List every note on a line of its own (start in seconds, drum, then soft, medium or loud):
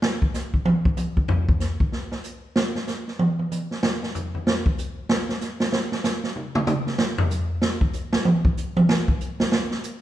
0.02 snare medium
0.22 kick medium
0.34 snare soft
0.34 hi-hat pedal medium
0.54 kick medium
0.65 high tom medium
0.85 kick medium
0.97 hi-hat pedal medium
0.97 high tom medium
1.17 kick medium
1.28 floor tom loud
1.49 kick medium
1.60 snare soft
1.60 hi-hat pedal medium
1.80 kick medium
1.92 snare soft
2.12 snare soft
2.24 hi-hat pedal medium
2.56 snare loud
2.75 snare soft
2.87 snare soft
2.87 hi-hat pedal medium
3.08 snare soft
3.19 high tom medium
3.39 high tom soft
3.52 hi-hat pedal medium
3.52 high tom soft
3.71 snare soft
3.83 snare loud
4.03 snare soft
4.15 floor tom medium
4.15 hi-hat pedal medium
4.34 floor tom soft
4.47 snare loud
4.66 kick medium
4.78 hi-hat pedal medium
5.09 snare loud
5.29 snare soft
5.41 snare soft
5.41 hi-hat pedal medium
5.60 snare medium
5.72 snare loud
5.92 snare medium
6.04 snare medium
6.04 hi-hat pedal medium
6.24 snare medium
6.36 mid tom soft
6.55 mid tom loud
6.67 hi-hat pedal medium
6.67 mid tom loud
6.87 snare soft
6.98 snare medium
7.18 floor tom loud
7.30 hi-hat pedal medium
7.62 snare medium
7.81 kick medium
7.93 hi-hat pedal medium
8.13 snare medium
8.25 high tom medium
8.45 kick medium
8.57 hi-hat pedal medium
8.77 high tom loud
8.89 snare loud
9.08 kick medium
9.20 hi-hat pedal medium
9.40 snare medium
9.52 snare loud
9.71 snare medium
9.83 hi-hat pedal medium